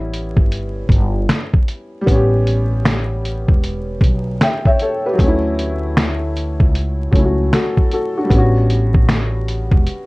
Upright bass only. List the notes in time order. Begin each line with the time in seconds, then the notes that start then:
Already playing: A1
0.37 G1
0.89 G1
2.08 A1
3.49 E1
4.01 B1
5.20 D2
6.60 C#2
7.13 C#2
8.31 A1
9.72 E1